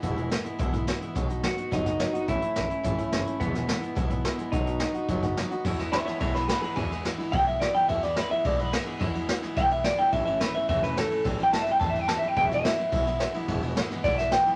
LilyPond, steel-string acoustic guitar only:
\new Staff \with { instrumentName = "Steel-string acoustic guitar" } { \time 4/4 \key e \major \tempo 4 = 214 <e, b, e gis b e'>8 <e gis b e'>8 <e gis b e'>8 <e gis b e'>8 <e, b, e gis b e'>8 <e gis b e'>8 <e gis b e'>8 <e gis b e'>8 | <b, fis b dis' fis'>8 <b dis' fis'>8 <fis b dis' fis'>8 <b dis' fis'>8 <b, fis b dis' fis'>8 <b dis' fis'>8 <fis b dis' fis'>8 <b dis' fis'>8 | <a, e a cis' e'>8 <a cis' e'>8 <e a cis' e'>8 <a cis' e'>8 <a, e a cis' e'>8 <a cis' e'>8 <e a cis' e'>8 <a cis' e'>8 | <e, b, e gis b e'>8 <e gis b e'>8 <e gis b e'>8 <e gis b e'>8 <e, b, e gis b e'>8 <e gis b e'>8 <e gis b e'>8 <e gis b e'>8 |
<b, fis b dis' fis'>8 <b dis' fis'>8 <fis b dis' fis'>8 <b dis' fis'>8 <b, fis b dis' fis'>8 <b dis' fis'>8 <fis b dis' fis'>8 <b dis' fis'>8 | <e, b, e gis b e'>8 <e gis b e'>8 <e gis b e'>8 <e gis b e'>8 <e, b, e gis b e'>8 <e gis b e'>8 <e gis b e'>8 <e gis b e'>8 | <e, b, e gis b e'>8 <e gis b e'>8 <e gis b e'>8 <e gis b e'>8 <e, b, e gis b e'>8 <e gis b e'>8 <e gis b e'>8 <e gis b e'>8 | <e, b, e gis b e'>8 <e gis b e'>8 <e gis b e'>8 <e gis b e'>8 <e, b, e gis b e'>8 <e gis b e'>8 <e gis b e'>8 <e gis b e'>8 |
<e, b, e gis b e'>8 <e gis b e'>8 <e gis e'>8 <e gis b e'>8 <e, b, e gis b e'>8 <e gis b e'>8 <e gis b e'>8 <e gis b e'>8 | <a, e a cis' e'>8 <a cis' e'>8 <e a cis' e'>8 <a cis' e'>8 <a, e a cis' e'>8 <a cis' e'>8 <e a cis' e'>8 <a cis' e'>8 | <a, e g c' e'>8 <g c' e'>8 <e g c' e'>8 <g c' e'>8 <a, e g c' e'>8 <g c' e'>8 <e g c' e'>8 <g c' e'>8 | <e, b, e gis b e'>8 <e gis b e'>8 <e gis b e'>8 <e gis b e'>8 <e, b, e gis b e'>8 <e gis b e'>8 <e gis b e'>8 <e gis b e'>8 |
<e, b, e gis b e'>8 <e gis b e'>8 <e gis b e'>8 <e gis b e'>8 <e, b, e gis b e'>8 <e gis b e'>8 <e gis b e'>8 <e gis b e'>8 | }